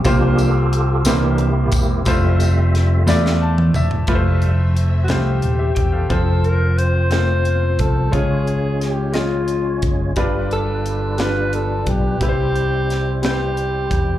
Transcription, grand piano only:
\new Staff \with { instrumentName = "Grand piano" } { \time 6/8 \key f \major \tempo 4. = 59 << { c4. c4. | r2 a''8 e''8 | r2 r16 <g' e''>16 g''16 <a' f''>16~ | <a' f''>16 r2 r8. |
des4. r4. | g,4. r4. | c4. r4. | } \\ { <bes f' g' c''>4. <bes e' g' c''>4. | <a e' f' c''>4. <a e' f' d''>4. | <a e' f' b' c''>4. <a e' f' c''>4. | <f c' f' c''>4. <a c' f' bes' c''>4. |
<aes des' f' des''>4. <aes des' f' ees''>4. | <g d' f' b'>4. <g d' f' b'>4. | <g c' e' b' c''>4. <g c' e' b' c''>4. | } >> }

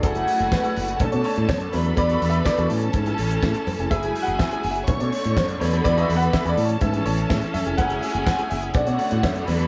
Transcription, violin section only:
\new Staff \with { instrumentName = "Violin section" } { \time 4/4 \key fis \minor \tempo 4 = 124 <fis' fis''>2 <a' a''>4. <b' b''>8~ | <b' b''>4. <a' a''>2~ <a' a''>8 | <gis' gis''>2 <cis'' cis'''>4. <b' b''>8~ | <b' b''>4. <a' a''>2~ <a' a''>8 |
<gis' gis''>2 <fis' fis''>4. <b' b''>8 | }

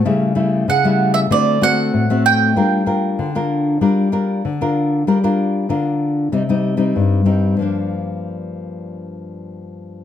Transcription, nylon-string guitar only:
\new Staff \with { instrumentName = "Nylon-string guitar" } { \time 4/4 \key g \minor \tempo 4 = 96 << { <g a e'>8 <g a e'>8 r16 <g a e'>8. <a c' fis'>8 <a c' fis'>8. <a c' fis'>8. | <d' f' bes'>8 <d' f' bes'>8. <d' f' bes'>8. <d' f' bes'>8 <d' f' bes'>8 r16 <d' f' bes'>8. | <d' f' bes'>16 <d' f' bes'>8. <d' f' bes'>4 <g c' ees'>16 <g c' ees'>8 <g c' ees'>8. <g c' ees'>8 | <g, f bes d'>1 | } \\ { cis4 cis4 d4 a,4 | g4 d4 g4 d4 | g4 d4 c4 g,4 | r1 | } >> }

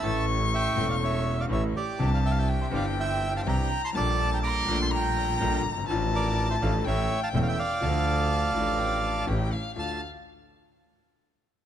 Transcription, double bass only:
\new Staff \with { instrumentName = "Double bass" } { \clef bass \time 4/4 \key d \minor \tempo 4 = 123 a,,4. e,,4. a,,8 r8 | c,4. g,,4. c,8 r8 | bes,,4. bes,,4. bes,,8 g,,8 | a,,4. a,,8 a,,8 r8 e,,8 r8 |
d,4. a,,4. a,,8 r8 | d,8 r2. r8 | }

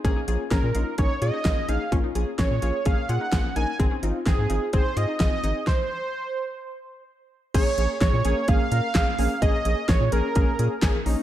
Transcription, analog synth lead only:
\new Staff \with { instrumentName = "Analog synth lead" } { \time 4/4 \key bes \minor \tempo 4 = 128 r4 bes'4 des''8 ees''4 f''8 | r4 des''4 f''8 ges''4 aes''8 | r4 aes'4 c''8 ees''8 ees''4 | c''2. r4 |
des''4 des''4 f''2 | ees''4 des''8 bes'2 r8 | }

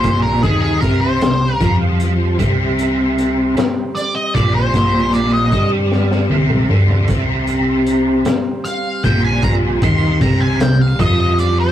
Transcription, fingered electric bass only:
\new Staff \with { instrumentName = "Fingered electric bass" } { \clef bass \time 6/8 \key c \minor \tempo 4. = 51 bes,,8 ees,8 c,8 c,8 f,4 | c,4. r4 bes,,8 | bes,,4 g,4 c,8 d,8 | c,4. r4 bes,,8~ |
bes,,8 ees,8 c,8 c,8 f,4 | }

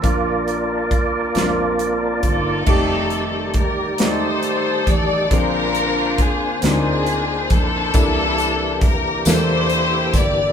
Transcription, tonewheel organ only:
\new Staff \with { instrumentName = "Tonewheel organ" } { \time 6/8 \key bes \major \tempo 4. = 46 << { <d' f' bes'>2~ <d' f' bes'>8 r8 | <ees g g' d''>2. | <d bes c' g' c''>2. | <e bes d' g'>2. | } \\ { <bes d''>2. | r2. | r2. | r2. | } >> }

